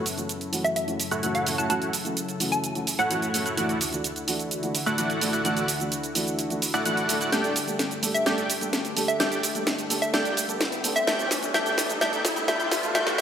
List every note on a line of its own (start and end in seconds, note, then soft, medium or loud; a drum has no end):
0.00 3.54 F#2 medium
0.00 3.54 C#3 medium
0.00 7.28 E4 medium
0.00 3.54 A4 medium
0.06 open hi-hat medium
0.06 shaker medium
0.17 0.26 E3 medium
0.17 0.26 A3 medium
0.17 0.26 C#4 medium
0.17 0.27 F#4 medium
0.17 closed hi-hat soft
0.17 shaker soft
0.29 closed hi-hat medium
0.29 shaker soft
0.41 closed hi-hat soft
0.41 shaker soft
0.52 0.85 E3 medium
0.52 0.85 A3 medium
0.52 0.85 C#4 medium
0.52 0.85 F#4 medium
0.52 open hi-hat medium
0.52 shaker medium
0.64 0.72 E5 medium
0.64 closed hi-hat soft
0.64 shaker soft
0.76 0.84 E5 medium
0.76 closed hi-hat medium
0.76 shaker soft
0.87 0.96 E3 medium
0.87 0.97 A3 medium
0.87 0.97 C#4 medium
0.87 0.97 F#4 medium
0.87 closed hi-hat soft
0.87 shaker soft
1.00 open hi-hat medium
1.00 shaker medium
1.11 1.21 A3 medium
1.11 1.21 E4 medium
1.11 1.21 F#4 medium
1.11 1.21 C#5 medium
1.11 1.21 F#5 medium
1.11 1.21 F#6 loud
1.11 closed hi-hat soft
1.11 shaker soft
1.22 1.37 E3 medium
1.22 1.37 A3 medium
1.22 1.55 A3 medium
1.22 1.37 C#4 medium
1.22 1.55 E4 medium
1.22 1.55 F#4 medium
1.22 1.37 F#4 medium
1.22 1.55 C#5 medium
1.22 1.55 F#5 medium
1.22 1.55 F#6 medium
1.22 closed hi-hat medium
1.22 shaker soft
1.35 1.52 F#5 medium
1.35 closed hi-hat soft
1.35 shaker soft
1.46 1.55 E3 medium
1.46 1.55 A3 medium
1.46 1.55 C#4 medium
1.46 1.56 A4 medium
1.46 open hi-hat loud
1.46 shaker medium
1.58 1.67 A3 medium
1.58 1.67 E4 medium
1.58 1.67 F#4 medium
1.58 1.67 C#5 medium
1.58 1.67 F#5 medium
1.58 1.66 A5 medium
1.58 1.67 F#6 medium
1.58 shaker soft
1.69 1.84 E3 medium
1.69 1.84 A3 medium
1.69 1.91 A3 loud
1.69 1.84 C#4 medium
1.69 1.91 E4 medium
1.69 1.91 F#4 medium
1.69 1.84 F#4 loud
1.69 1.91 C#5 medium
1.69 1.91 F#5 loud
1.69 1.77 A5 medium
1.69 1.91 F#6 loud
1.69 closed hi-hat medium
1.69 shaker soft
1.82 closed hi-hat soft
1.82 shaker soft
1.93 open hi-hat loud
1.93 shaker medium
2.05 2.14 E3 medium
2.05 2.14 A3 medium
2.05 2.14 C#4 medium
2.05 2.14 F#4 medium
2.05 closed hi-hat soft
2.05 shaker soft
2.17 closed hi-hat medium
2.17 shaker soft
2.29 closed hi-hat soft
2.29 shaker soft
2.40 2.72 E3 medium
2.40 2.73 A3 medium
2.40 2.73 C#4 medium
2.40 2.73 F#4 medium
2.40 open hi-hat loud
2.40 shaker medium
2.52 2.69 A5 medium
2.52 closed hi-hat soft
2.52 shaker soft
2.64 closed hi-hat medium
2.64 shaker soft
2.75 2.84 E3 medium
2.75 2.84 A3 medium
2.75 2.84 C#4 medium
2.75 2.85 F#4 medium
2.75 closed hi-hat soft
2.75 shaker soft
2.87 open hi-hat loud
2.87 shaker medium
2.99 3.09 A3 medium
2.99 3.09 E4 medium
2.99 3.09 F#4 medium
2.99 3.09 C#5 medium
2.99 3.34 F#5 medium
2.99 3.09 F#5 medium
2.99 3.09 F#6 medium
2.99 closed hi-hat soft
2.99 shaker soft
3.10 3.24 E3 medium
3.10 3.25 A3 medium
3.10 3.43 A3 medium
3.10 3.25 C#4 medium
3.10 3.43 E4 medium
3.10 3.43 F#4 medium
3.10 3.25 F#4 loud
3.10 3.43 C#5 medium
3.10 3.43 F#5 loud
3.10 3.43 F#6 loud
3.10 closed hi-hat medium
3.10 shaker soft
3.22 closed hi-hat soft
3.22 shaker soft
3.33 3.42 E3 medium
3.33 3.43 A3 medium
3.33 3.43 C#4 medium
3.33 3.43 A4 medium
3.33 open hi-hat loud
3.33 shaker medium
3.46 3.55 A3 medium
3.46 3.55 E4 medium
3.46 3.55 F#4 medium
3.46 3.55 C#5 medium
3.46 3.55 F#5 loud
3.46 3.55 F#6 medium
3.46 closed hi-hat soft
3.46 shaker soft
3.57 7.29 D2 medium
3.57 7.29 D3 medium
3.57 3.71 E3 medium
3.57 3.71 A3 medium
3.57 3.78 A3 loud
3.57 3.72 D4 medium
3.57 3.78 E4 medium
3.57 7.29 F#4 medium
3.57 3.78 F#4 medium
3.57 3.72 F#4 loud
3.57 3.78 D5 medium
3.57 3.78 F#5 loud
3.57 3.78 F#6 loud
3.57 closed hi-hat medium
3.57 shaker soft
3.69 closed hi-hat soft
3.69 shaker soft
3.81 open hi-hat loud
3.81 shaker medium
3.92 4.01 E3 medium
3.92 4.01 A3 medium
3.92 4.01 D4 medium
3.92 4.02 F#4 medium
3.92 closed hi-hat soft
3.92 shaker soft
4.04 closed hi-hat medium
4.04 shaker soft
4.16 closed hi-hat soft
4.16 shaker soft
4.27 4.60 E3 medium
4.27 4.60 A3 medium
4.27 4.60 D4 medium
4.27 4.60 F#4 loud
4.27 open hi-hat loud
4.27 shaker medium
4.39 closed hi-hat soft
4.39 shaker soft
4.51 closed hi-hat medium
4.51 shaker soft
4.62 4.71 E3 medium
4.62 4.72 A3 medium
4.62 4.72 D4 medium
4.62 4.72 F#4 medium
4.62 closed hi-hat soft
4.62 shaker soft
4.75 open hi-hat loud
4.75 shaker medium
4.86 4.96 A3 medium
4.86 4.96 E4 medium
4.86 4.96 F#4 medium
4.86 4.96 D5 medium
4.86 4.96 F#5 loud
4.86 4.96 F#6 loud
4.86 closed hi-hat soft
4.86 shaker soft
4.97 5.12 E3 medium
4.97 5.12 A3 medium
4.97 5.30 A3 medium
4.97 5.12 D4 medium
4.97 5.30 E4 medium
4.97 5.30 F#4 medium
4.97 5.12 F#4 loud
4.97 5.30 D5 medium
4.97 5.30 F#5 medium
4.97 5.30 F#6 loud
4.97 closed hi-hat medium
4.97 shaker soft
5.10 closed hi-hat soft
5.10 shaker soft
5.21 5.30 E3 medium
5.21 5.30 A3 medium
5.21 5.30 D4 medium
5.21 5.31 A4 medium
5.21 open hi-hat loud
5.21 shaker medium
5.33 5.42 A3 medium
5.33 5.42 E4 medium
5.33 5.42 F#4 medium
5.33 5.42 D5 medium
5.33 5.42 F#5 loud
5.33 5.42 F#6 medium
5.33 closed hi-hat soft
5.33 shaker soft
5.44 5.59 E3 loud
5.44 5.59 A3 medium
5.44 5.66 A3 loud
5.44 5.59 D4 medium
5.44 5.66 E4 medium
5.44 5.66 F#4 medium
5.44 5.59 F#4 loud
5.44 5.66 D5 medium
5.44 5.66 F#5 loud
5.44 5.66 F#6 loud
5.44 closed hi-hat medium
5.44 shaker soft
5.57 closed hi-hat soft
5.57 shaker soft
5.68 open hi-hat loud
5.68 shaker medium
5.79 5.89 E3 medium
5.79 5.89 A3 medium
5.79 5.89 D4 medium
5.79 5.89 F#4 medium
5.79 closed hi-hat soft
5.79 shaker soft
5.92 closed hi-hat medium
5.92 shaker soft
6.04 closed hi-hat soft
6.04 shaker soft
6.15 6.47 E3 medium
6.15 6.47 A3 medium
6.15 6.48 D4 medium
6.15 6.48 F#4 loud
6.15 open hi-hat loud
6.15 shaker medium
6.27 closed hi-hat soft
6.27 shaker soft
6.39 closed hi-hat medium
6.39 shaker soft
6.50 6.59 E3 medium
6.50 6.59 A3 medium
6.50 6.59 D4 medium
6.50 6.59 F#4 medium
6.50 closed hi-hat soft
6.50 shaker soft
6.62 open hi-hat loud
6.62 shaker medium
6.74 6.84 A3 medium
6.74 6.84 E4 medium
6.74 6.84 F#4 medium
6.74 6.84 D5 medium
6.74 6.84 F#5 loud
6.74 6.84 F#6 loud
6.74 closed hi-hat soft
6.74 shaker soft
6.85 6.99 E3 medium
6.85 7.00 A3 medium
6.85 7.18 A3 medium
6.85 7.00 D4 medium
6.85 7.18 E4 medium
6.85 7.18 F#4 medium
6.85 7.00 F#4 loud
6.85 7.18 D5 medium
6.85 7.18 F#5 loud
6.85 7.18 F#6 loud
6.85 closed hi-hat medium
6.85 shaker soft
6.97 closed hi-hat soft
6.97 shaker soft
7.08 7.17 E3 medium
7.08 7.18 A3 medium
7.08 7.18 D4 medium
7.08 7.18 A4 medium
7.08 open hi-hat loud
7.08 shaker medium
7.21 7.30 A3 medium
7.21 7.30 E4 medium
7.21 7.30 F#4 medium
7.21 7.30 D5 medium
7.21 7.30 F#5 loud
7.21 7.30 F#6 medium
7.21 closed hi-hat soft
7.21 shaker soft
7.32 11.04 G2 medium
7.32 11.04 D3 medium
7.32 7.46 G3 medium
7.32 7.46 A3 medium
7.32 7.53 A3 medium
7.32 11.04 A3 medium
7.32 7.53 D4 medium
7.32 7.47 D4 medium
7.32 7.53 G4 medium
7.32 11.04 G4 medium
7.32 7.47 A4 loud
7.32 7.53 D5 medium
7.32 7.53 G5 loud
7.32 7.53 G6 medium
7.32 snare soft
7.32 closed hi-hat medium
7.32 riser medium
7.32 shaker soft
7.44 closed hi-hat soft
7.44 shaker soft
7.56 open hi-hat loud
7.56 shaker medium
7.67 7.76 G3 medium
7.67 7.76 A3 medium
7.67 7.76 D4 medium
7.67 7.77 A4 medium
7.67 closed hi-hat soft
7.67 shaker soft
7.79 snare soft
7.79 closed hi-hat medium
7.79 shaker soft
7.91 closed hi-hat soft
7.91 shaker soft
8.02 8.24 G3 medium
8.02 8.24 A3 medium
8.02 8.24 D4 medium
8.02 8.25 A4 medium
8.02 open hi-hat loud
8.02 shaker medium
8.14 8.22 E5 medium
8.14 closed hi-hat soft
8.14 shaker soft
8.26 8.40 G3 medium
8.26 8.40 A3 medium
8.26 8.47 A3 medium
8.26 8.47 D4 medium
8.26 8.40 D4 medium
8.26 8.47 G4 medium
8.26 8.41 A4 loud
8.26 8.47 D5 medium
8.26 8.47 G5 loud
8.26 8.47 G6 loud
8.26 snare medium
8.26 closed hi-hat medium
8.26 shaker soft
8.38 closed hi-hat soft
8.38 shaker soft
8.50 open hi-hat loud
8.50 shaker medium
8.61 8.70 G3 medium
8.61 8.70 A3 medium
8.61 8.70 D4 medium
8.61 8.70 A4 medium
8.61 closed hi-hat soft
8.61 shaker soft
8.73 snare medium
8.73 closed hi-hat medium
8.73 shaker soft
8.85 closed hi-hat soft
8.85 shaker soft
8.96 9.18 G3 medium
8.96 9.18 A3 medium
8.96 9.18 D4 medium
8.96 9.18 A4 loud
8.96 open hi-hat loud
8.96 shaker medium
9.08 9.16 E5 medium
9.08 closed hi-hat soft
9.08 shaker soft
9.19 9.34 G3 loud
9.19 9.34 A3 medium
9.19 9.41 A3 medium
9.19 9.41 D4 medium
9.19 9.34 D4 medium
9.19 9.41 G4 medium
9.19 9.34 A4 loud
9.19 9.41 D5 medium
9.19 9.41 G5 loud
9.19 9.41 G6 loud
9.19 snare medium
9.19 closed hi-hat medium
9.19 shaker soft
9.32 closed hi-hat soft
9.32 shaker soft
9.43 open hi-hat loud
9.43 shaker medium
9.54 9.64 G3 medium
9.54 9.64 A3 medium
9.54 9.64 D4 medium
9.54 9.64 A4 medium
9.54 closed hi-hat soft
9.54 shaker soft
9.67 snare medium
9.67 closed hi-hat medium
9.67 shaker soft
9.79 closed hi-hat soft
9.79 shaker soft
9.90 10.11 G3 medium
9.90 10.12 A3 medium
9.90 10.12 D4 medium
9.90 10.12 A4 loud
9.90 open hi-hat loud
9.90 shaker medium
10.02 10.09 E5 medium
10.02 closed hi-hat soft
10.02 shaker soft
10.13 10.27 G3 medium
10.13 10.28 A3 medium
10.13 10.34 A3 medium
10.13 10.34 D4 medium
10.13 10.28 D4 medium
10.13 10.34 G4 medium
10.13 10.28 A4 loud
10.13 10.34 D5 medium
10.13 10.34 G5 loud
10.13 10.34 G6 loud
10.13 snare medium
10.13 closed hi-hat medium
10.13 shaker soft
10.25 closed hi-hat soft
10.25 shaker soft
10.37 open hi-hat medium
10.37 shaker medium
10.48 10.57 G3 medium
10.48 10.58 A3 medium
10.48 10.58 D4 medium
10.48 10.58 A4 medium
10.48 closed hi-hat soft
10.48 shaker soft
10.61 snare medium
10.61 closed hi-hat medium
10.61 shaker soft
10.72 closed hi-hat soft
10.72 shaker soft
10.83 11.05 G3 medium
10.83 11.05 A3 medium
10.83 11.06 D4 medium
10.83 11.06 A4 loud
10.83 open hi-hat loud
10.83 shaker medium
10.96 11.03 E5 medium
10.96 closed hi-hat soft
10.96 shaker soft
11.07 13.21 A2 medium
11.07 13.21 E3 medium
11.07 11.21 G3 loud
11.07 11.21 A3 medium
11.07 11.28 A3 medium
11.07 13.21 B3 medium
11.07 11.28 D4 medium
11.07 11.22 D4 medium
11.07 11.28 G4 medium
11.07 13.21 A4 medium
11.07 11.22 A4 loud
11.07 11.28 D5 medium
11.07 11.15 E5 medium
11.07 11.28 G5 loud
11.07 11.28 G6 loud
11.07 snare medium
11.07 closed hi-hat medium
11.07 shaker soft
11.19 closed hi-hat soft
11.19 shaker soft
11.31 snare medium
11.31 open hi-hat loud
11.31 shaker medium
11.42 11.51 G3 medium
11.42 11.51 A3 medium
11.42 11.51 D4 medium
11.42 11.52 A4 medium
11.42 closed hi-hat soft
11.42 shaker soft
11.54 11.68 G3 loud
11.54 11.68 A3 medium
11.54 11.75 A3 loud
11.54 11.75 D4 medium
11.54 11.68 D4 medium
11.54 11.75 G4 medium
11.54 11.69 A4 loud
11.54 11.75 D5 medium
11.54 11.62 E5 medium
11.54 11.75 G5 loud
11.54 11.75 G6 loud
11.54 snare medium
11.54 closed hi-hat medium
11.54 shaker soft
11.66 closed hi-hat soft
11.66 shaker soft
11.78 snare medium
11.78 open hi-hat loud
11.78 shaker medium
11.89 11.98 G3 medium
11.89 11.98 A3 medium
11.89 11.98 D4 medium
11.89 11.99 A4 medium
11.89 closed hi-hat soft
11.89 shaker soft
12.01 12.15 G3 loud
12.01 12.15 A3 medium
12.01 12.22 A3 loud
12.01 12.22 D4 medium
12.01 12.15 D4 medium
12.01 12.22 G4 medium
12.01 12.16 A4 loud
12.01 12.22 D5 medium
12.01 12.09 E5 medium
12.01 12.22 G5 loud
12.01 12.22 G6 loud
12.01 snare medium
12.01 closed hi-hat medium
12.01 shaker soft
12.13 closed hi-hat soft
12.13 shaker soft
12.25 snare medium
12.25 open hi-hat loud
12.25 shaker medium
12.36 12.45 G3 medium
12.36 12.45 A3 medium
12.36 12.45 D4 medium
12.36 12.45 A4 medium
12.36 closed hi-hat soft
12.36 shaker soft
12.47 12.62 G3 loud
12.47 12.62 A3 medium
12.47 12.69 A3 loud
12.47 12.69 D4 medium
12.47 12.62 D4 medium
12.47 12.69 G4 medium
12.47 12.62 A4 loud
12.47 12.69 D5 medium
12.47 12.56 E5 medium
12.47 12.69 G5 loud
12.47 12.69 G6 loud
12.47 snare medium
12.47 closed hi-hat medium
12.47 shaker soft
12.60 closed hi-hat soft
12.60 shaker soft
12.71 snare medium
12.71 open hi-hat loud
12.71 shaker medium
12.83 12.92 G3 medium
12.83 12.92 A3 medium
12.83 12.92 D4 medium
12.83 12.92 A4 medium
12.83 closed hi-hat soft
12.83 shaker soft
12.94 13.09 G3 loud
12.94 13.09 A3 loud
12.94 13.16 A3 loud
12.94 13.16 D4 medium
12.94 13.09 D4 medium
12.94 13.16 G4 medium
12.94 13.09 A4 loud
12.94 13.16 D5 medium
12.94 13.02 E5 medium
12.94 13.16 G5 loud
12.94 13.16 G6 loud
12.94 snare medium
12.94 closed hi-hat medium
12.94 shaker soft
13.07 snare medium
13.07 closed hi-hat soft
13.07 shaker soft
13.18 13.21 G3 loud